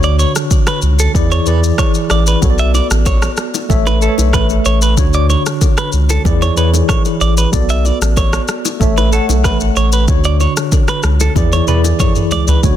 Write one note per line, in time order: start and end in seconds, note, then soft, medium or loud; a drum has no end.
0.00 0.25 D2 loud
0.00 0.66 D3 medium
0.00 0.67 D4 medium
0.00 0.67 F#4 medium
0.00 0.67 C#5 medium
0.00 shaker soft
0.04 0.15 D5 medium
0.19 0.32 C#5 medium
0.19 shaker medium
0.36 cross-stick medium
0.36 shaker loud
0.51 kick loud
0.51 shaker medium
0.67 0.79 B4 medium
0.67 cross-stick loud
0.67 shaker medium
0.82 1.08 C#2 medium
0.82 shaker medium
0.99 1.11 A4 medium
0.99 shaker loud
1.14 1.40 E2 loud
1.14 1.40 E3 medium
1.14 1.40 E4 medium
1.14 1.41 G#4 medium
1.14 1.41 D5 loud
1.14 kick loud
1.14 shaker medium
1.31 1.47 C#5 medium
1.31 shaker soft
1.46 1.72 E2 medium
1.46 2.06 E3 medium
1.46 2.06 E4 medium
1.46 2.07 G#4 medium
1.46 1.59 B4 medium
1.46 2.07 D5 medium
1.46 shaker medium
1.64 shaker medium
1.78 1.91 C#5 medium
1.78 kick loud
1.78 cross-stick loud
1.78 shaker medium
1.94 shaker medium
2.10 2.36 A1 loud
2.10 2.23 D5 medium
2.10 cross-stick medium
2.10 shaker medium
2.27 2.39 B4 medium
2.27 shaker medium
2.41 2.81 B1 loud
2.41 3.22 B3 medium
2.41 3.22 F#4 medium
2.41 3.22 A4 medium
2.41 2.50 C#5 medium
2.41 kick loud
2.41 low conga medium
2.41 shaker medium
2.50 3.26 D5 medium
2.58 2.71 E5 medium
2.58 shaker medium
2.74 2.87 D5 medium
2.74 low bongo medium
2.74 shaker medium
2.91 3.28 A1 loud
2.91 cross-stick medium
2.91 shaker medium
3.06 3.30 C#5 medium
3.06 kick loud
3.06 high bongo medium
3.06 shaker medium
3.22 cross-stick loud
3.22 shaker medium
3.37 cross-stick medium
3.37 shaker medium
3.54 low bongo medium
3.54 shaker loud
3.69 4.08 A1 loud
3.69 3.95 A3 medium
3.69 3.95 A4 medium
3.69 3.96 C#5 medium
3.69 3.96 E5 loud
3.69 kick loud
3.69 low conga medium
3.69 shaker medium
3.86 3.98 B4 medium
3.86 low bongo medium
3.86 shaker soft
4.01 4.61 A3 medium
4.01 4.61 A4 medium
4.01 4.15 A4 medium
4.01 4.09 B4 medium
4.01 4.62 E5 medium
4.01 shaker medium
4.09 4.65 C#5 medium
4.18 4.35 B1 loud
4.18 high bongo medium
4.18 low bongo medium
4.18 shaker medium
4.33 4.59 A1 medium
4.33 4.46 B4 medium
4.33 kick medium
4.33 cross-stick medium
4.33 high bongo medium
4.33 low conga medium
4.33 shaker medium
4.49 high bongo medium
4.49 shaker medium
4.65 4.99 A1 medium
4.65 4.78 C#5 medium
4.65 shaker medium
4.82 4.94 B4 medium
4.82 shaker medium
4.96 5.36 D2 loud
4.96 5.77 D3 medium
4.96 5.77 D4 medium
4.96 5.78 F#4 medium
4.96 5.78 C#5 medium
4.96 kick loud
4.96 low conga medium
4.96 shaker medium
5.13 5.26 D5 medium
5.13 shaker medium
5.29 5.42 C#5 medium
5.29 low bongo medium
5.29 shaker medium
5.46 cross-stick medium
5.46 shaker medium
5.61 kick loud
5.61 high bongo medium
5.61 shaker medium
5.77 5.90 B4 medium
5.77 cross-stick loud
5.77 shaker medium
5.92 6.18 C#2 medium
5.92 shaker medium
6.09 6.22 A4 medium
6.09 low bongo medium
6.09 shaker loud
6.24 6.50 E2 loud
6.24 6.50 E3 medium
6.24 6.51 E4 medium
6.24 6.51 G#4 medium
6.24 6.52 D5 loud
6.24 kick loud
6.24 low conga medium
6.24 shaker medium
6.42 6.54 C#5 medium
6.42 low bongo medium
6.42 shaker soft
6.56 6.82 E2 medium
6.56 7.16 E3 medium
6.56 7.17 E4 medium
6.56 7.17 G#4 medium
6.56 6.70 B4 medium
6.56 7.18 C#5 medium
6.56 shaker medium
6.74 high bongo medium
6.74 low bongo medium
6.74 shaker medium
6.89 7.02 C#5 medium
6.89 kick loud
6.89 cross-stick medium
6.89 high bongo medium
6.89 low conga medium
6.89 shaker medium
7.05 high bongo medium
7.05 shaker medium
7.21 7.46 A1 medium
7.21 7.34 D5 medium
7.21 shaker medium
7.37 7.49 B4 medium
7.37 shaker medium
7.52 7.91 B1 loud
7.52 8.32 B3 medium
7.52 8.33 F#4 medium
7.52 8.33 A4 medium
7.52 8.34 D5 medium
7.52 kick loud
7.52 low conga medium
7.52 shaker medium
7.69 7.85 E5 medium
7.69 shaker medium
7.85 7.98 D5 medium
7.85 low bongo medium
7.85 shaker medium
8.01 8.39 A1 loud
8.01 cross-stick medium
8.01 shaker medium
8.17 8.41 C#5 medium
8.17 kick loud
8.17 high bongo medium
8.17 shaker medium
8.33 cross-stick loud
8.33 shaker medium
8.48 cross-stick medium
8.48 shaker medium
8.65 low bongo medium
8.65 shaker loud
8.80 9.19 A1 loud
8.80 9.06 A3 medium
8.80 9.06 A4 medium
8.80 9.07 C#5 medium
8.80 9.07 E5 loud
8.80 kick loud
8.80 low conga medium
8.80 shaker medium
8.97 9.09 B4 medium
8.97 low bongo medium
8.97 shaker soft
9.11 9.72 A3 medium
9.11 9.72 A4 medium
9.11 9.25 A4 medium
9.11 9.72 C#5 medium
9.11 9.73 F#5 medium
9.11 shaker medium
9.29 9.46 B1 medium
9.29 high bongo medium
9.29 low bongo medium
9.29 shaker medium
9.44 9.70 A1 medium
9.44 9.57 B4 medium
9.44 kick loud
9.44 cross-stick medium
9.44 high bongo medium
9.44 low conga medium
9.44 shaker medium
9.60 high bongo soft
9.60 shaker medium
9.76 10.10 A1 medium
9.76 9.89 C#5 medium
9.76 shaker medium
9.92 10.05 B4 medium
9.92 shaker medium
10.07 10.46 D2 loud
10.07 10.88 D3 medium
10.07 10.88 D4 medium
10.07 10.89 F#4 medium
10.07 10.89 C#5 medium
10.07 kick loud
10.07 low conga medium
10.07 shaker medium
10.24 10.37 D5 medium
10.24 shaker medium
10.40 10.53 C#5 medium
10.40 low bongo medium
10.40 shaker medium
10.57 cross-stick medium
10.57 shaker medium
10.72 kick loud
10.72 high bongo medium
10.72 shaker medium
10.88 11.01 B4 medium
10.88 cross-stick loud
10.88 shaker medium
11.03 11.29 C#2 medium
11.03 cross-stick loud
11.03 shaker medium
11.20 11.32 A4 medium
11.20 low bongo medium
11.20 shaker loud
11.35 11.61 E2 loud
11.35 11.61 E3 medium
11.35 11.62 E4 medium
11.35 11.62 G#4 medium
11.35 11.62 D5 loud
11.35 kick loud
11.35 high tom medium
11.35 low conga medium
11.35 shaker medium
11.52 11.64 C#5 medium
11.52 low bongo medium
11.52 shaker medium
11.67 11.93 E2 medium
11.67 12.27 E3 medium
11.67 12.27 E4 medium
11.67 12.28 G#4 medium
11.67 11.81 B4 medium
11.67 12.28 D5 medium
11.67 mid tom medium
11.67 shaker medium
11.84 high bongo medium
11.84 low bongo medium
11.84 shaker medium
11.99 12.12 C#5 medium
11.99 kick medium
11.99 mid tom medium
11.99 high bongo medium
11.99 low conga medium
11.99 shaker medium
12.15 mid tom medium
12.15 high bongo soft
12.15 shaker medium
12.31 12.57 C#2 medium
12.31 12.45 D5 medium
12.31 floor tom loud
12.31 shaker medium
12.48 12.60 B4 medium
12.48 floor tom medium
12.48 shaker medium
12.62 12.77 D2 loud
12.62 12.77 D3 medium
12.62 12.77 A3 medium
12.62 12.77 C#4 medium
12.62 12.77 D4 medium
12.62 12.77 F#4 medium
12.62 12.77 C#5 medium
12.62 kick loud
12.62 low conga medium
12.62 shaker medium